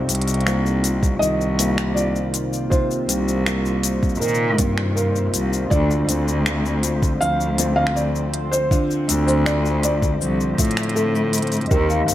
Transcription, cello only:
0, 0, Header, 1, 2, 480
1, 0, Start_track
1, 0, Tempo, 750000
1, 1736, Time_signature, 4, 2, 24, 8
1, 7772, End_track
2, 0, Start_track
2, 0, Title_t, "Cello"
2, 0, Program_c, 0, 42
2, 56, Note_on_c, 0, 36, 96
2, 733, Note_off_c, 0, 36, 0
2, 777, Note_on_c, 0, 36, 88
2, 1693, Note_off_c, 0, 36, 0
2, 1974, Note_on_c, 0, 36, 96
2, 2652, Note_off_c, 0, 36, 0
2, 2695, Note_on_c, 0, 46, 97
2, 2937, Note_on_c, 0, 43, 94
2, 2947, Note_off_c, 0, 46, 0
2, 3373, Note_off_c, 0, 43, 0
2, 3415, Note_on_c, 0, 36, 87
2, 3602, Note_off_c, 0, 36, 0
2, 3657, Note_on_c, 0, 38, 108
2, 3843, Note_off_c, 0, 38, 0
2, 3896, Note_on_c, 0, 38, 103
2, 4573, Note_off_c, 0, 38, 0
2, 4612, Note_on_c, 0, 38, 83
2, 5531, Note_off_c, 0, 38, 0
2, 5813, Note_on_c, 0, 38, 110
2, 6491, Note_off_c, 0, 38, 0
2, 6534, Note_on_c, 0, 36, 97
2, 6721, Note_off_c, 0, 36, 0
2, 6775, Note_on_c, 0, 45, 98
2, 7452, Note_off_c, 0, 45, 0
2, 7494, Note_on_c, 0, 39, 107
2, 7681, Note_off_c, 0, 39, 0
2, 7734, Note_on_c, 0, 39, 107
2, 7772, Note_off_c, 0, 39, 0
2, 7772, End_track
0, 0, End_of_file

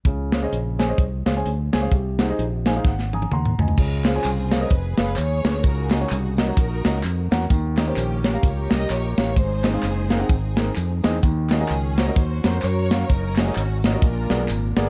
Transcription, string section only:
0, 0, Header, 1, 2, 480
1, 0, Start_track
1, 0, Key_signature, -5, "major"
1, 0, Tempo, 465839
1, 50, Time_signature, 4, 2, 24, 8
1, 15344, End_track
2, 0, Start_track
2, 0, Title_t, "String section"
2, 0, Program_c, 0, 48
2, 4189, Note_on_c, 0, 68, 85
2, 4191, Note_on_c, 0, 60, 65
2, 4197, Note_on_c, 0, 65, 67
2, 4629, Note_off_c, 0, 68, 0
2, 4658, Note_on_c, 0, 70, 90
2, 4817, Note_off_c, 0, 60, 0
2, 4820, Note_off_c, 0, 65, 0
2, 4852, Note_off_c, 0, 70, 0
2, 4855, Note_on_c, 0, 71, 82
2, 4874, Note_on_c, 0, 68, 62
2, 5126, Note_off_c, 0, 71, 0
2, 5138, Note_on_c, 0, 71, 96
2, 5317, Note_on_c, 0, 73, 117
2, 5318, Note_off_c, 0, 71, 0
2, 5322, Note_off_c, 0, 68, 0
2, 5334, Note_on_c, 0, 68, 80
2, 5778, Note_off_c, 0, 68, 0
2, 5795, Note_on_c, 0, 70, 101
2, 5803, Note_off_c, 0, 73, 0
2, 5812, Note_on_c, 0, 66, 73
2, 5815, Note_on_c, 0, 63, 71
2, 6073, Note_on_c, 0, 68, 86
2, 6087, Note_off_c, 0, 70, 0
2, 6261, Note_off_c, 0, 66, 0
2, 6273, Note_on_c, 0, 66, 78
2, 6279, Note_off_c, 0, 68, 0
2, 6563, Note_on_c, 0, 70, 102
2, 6566, Note_off_c, 0, 66, 0
2, 6567, Note_off_c, 0, 63, 0
2, 6579, Note_on_c, 0, 66, 69
2, 6580, Note_on_c, 0, 63, 67
2, 7486, Note_off_c, 0, 70, 0
2, 7494, Note_off_c, 0, 66, 0
2, 7495, Note_off_c, 0, 63, 0
2, 8021, Note_on_c, 0, 67, 95
2, 8023, Note_on_c, 0, 58, 75
2, 8024, Note_on_c, 0, 61, 73
2, 8463, Note_off_c, 0, 67, 0
2, 8500, Note_on_c, 0, 70, 91
2, 8687, Note_off_c, 0, 70, 0
2, 8692, Note_on_c, 0, 73, 93
2, 8695, Note_on_c, 0, 67, 76
2, 8699, Note_on_c, 0, 70, 74
2, 8936, Note_off_c, 0, 58, 0
2, 8936, Note_off_c, 0, 61, 0
2, 8974, Note_off_c, 0, 73, 0
2, 8977, Note_on_c, 0, 75, 108
2, 9166, Note_on_c, 0, 73, 111
2, 9170, Note_off_c, 0, 75, 0
2, 9438, Note_off_c, 0, 73, 0
2, 9451, Note_on_c, 0, 73, 102
2, 9609, Note_off_c, 0, 67, 0
2, 9611, Note_off_c, 0, 70, 0
2, 9632, Note_off_c, 0, 73, 0
2, 9646, Note_on_c, 0, 63, 78
2, 9648, Note_on_c, 0, 68, 81
2, 9650, Note_on_c, 0, 72, 100
2, 10408, Note_on_c, 0, 70, 89
2, 10413, Note_off_c, 0, 72, 0
2, 10565, Note_off_c, 0, 63, 0
2, 10566, Note_off_c, 0, 68, 0
2, 10604, Note_off_c, 0, 70, 0
2, 10612, Note_on_c, 0, 63, 54
2, 10616, Note_on_c, 0, 60, 55
2, 10616, Note_on_c, 0, 68, 76
2, 11376, Note_off_c, 0, 68, 0
2, 11527, Note_off_c, 0, 63, 0
2, 11529, Note_off_c, 0, 60, 0
2, 11861, Note_on_c, 0, 68, 88
2, 11867, Note_on_c, 0, 61, 73
2, 12302, Note_off_c, 0, 68, 0
2, 12335, Note_on_c, 0, 70, 96
2, 12528, Note_off_c, 0, 70, 0
2, 12530, Note_on_c, 0, 72, 98
2, 12537, Note_on_c, 0, 66, 68
2, 12777, Note_off_c, 0, 61, 0
2, 12805, Note_off_c, 0, 72, 0
2, 12817, Note_on_c, 0, 72, 101
2, 12995, Note_off_c, 0, 72, 0
2, 13006, Note_off_c, 0, 66, 0
2, 13011, Note_on_c, 0, 73, 121
2, 13017, Note_on_c, 0, 70, 85
2, 13018, Note_on_c, 0, 66, 82
2, 13458, Note_off_c, 0, 70, 0
2, 13459, Note_off_c, 0, 66, 0
2, 13488, Note_off_c, 0, 73, 0
2, 13492, Note_on_c, 0, 70, 102
2, 13495, Note_on_c, 0, 61, 81
2, 13497, Note_on_c, 0, 63, 70
2, 13774, Note_off_c, 0, 70, 0
2, 13788, Note_on_c, 0, 68, 84
2, 13974, Note_off_c, 0, 68, 0
2, 13992, Note_on_c, 0, 66, 83
2, 14245, Note_off_c, 0, 66, 0
2, 14276, Note_on_c, 0, 62, 70
2, 14279, Note_on_c, 0, 65, 70
2, 14280, Note_on_c, 0, 70, 93
2, 14409, Note_off_c, 0, 61, 0
2, 14410, Note_off_c, 0, 63, 0
2, 15182, Note_off_c, 0, 62, 0
2, 15183, Note_off_c, 0, 65, 0
2, 15184, Note_off_c, 0, 70, 0
2, 15344, End_track
0, 0, End_of_file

